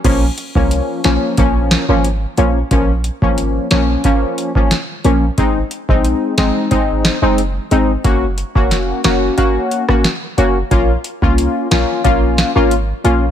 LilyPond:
<<
  \new Staff \with { instrumentName = "Synth stab" } { \time 4/4 \key bes \minor \tempo 4 = 90 <f bes des'>16 r8 <f bes des'>8. <f bes des'>8 <f bes des'>8. <f bes des'>16 r8 <f bes des'>16 r16 | <f bes des'>16 r8 <f bes des'>8. <f bes des'>8 <f bes des'>8. <f bes des'>16 r8 <f bes des'>16 r16 | <aes c' ees'>16 r8 <aes c' ees'>8. <aes c' ees'>8 <aes c' ees'>8. <aes c' ees'>16 r8 <aes c' ees'>16 r16 | <bes des' ges'>16 r8 <bes des' ges'>8. <bes des' ges'>8 <bes des' ges'>8. <bes des' ges'>16 r8 <bes des' ges'>16 r16 |
<bes des' f'>16 r8 <bes des' f'>8. <bes des' f'>8 <bes des' f'>8. <bes des' f'>16 r8 <bes des' f'>16 r16 | }
  \new Staff \with { instrumentName = "808-style bass" } { \clef bass \time 4/4 \key bes \minor bes,,8 r16 c,8 r16 bes,,16 r16 bes,,8. aes,,8. bes,,8 | bes,,8. aes,,8. bes,,8 r4. bes,,8 | aes,,8 r16 bes,,8 r16 aes,,16 r16 aes,,8. ges,,8. aes,,8 | ges,,8. f,,8. ges,,8 r4. ges,,8 |
bes,,8 r16 c,8 r16 bes,,16 r16 bes,,8. aes,,8. bes,,8 | }
  \new DrumStaff \with { instrumentName = "Drums" } \drummode { \time 4/4 <cymc hh bd>8 hh16 bd16 hh8 <hh sn>8 <hh bd>8 <hh sn>8 hh8 hh8 | <hh bd>8 hh16 bd16 hh8 <hh sn>8 <hh bd>8 hh16 bd16 <hh sn>8 hh8 | <hh bd>8 hh16 bd16 hh8 <hh sn>8 <hh bd>8 <hh sn>8 hh8 hh8 | <hh bd>8 hh16 bd16 <hh sn>8 <hh sn>8 <hh bd>8 hh16 <bd ss>16 <hh sn>8 hh8 |
<hh bd>8 hh16 bd16 hh8 <hh sn>8 <hh bd>8 <hh sn>8 hh8 hh8 | }
>>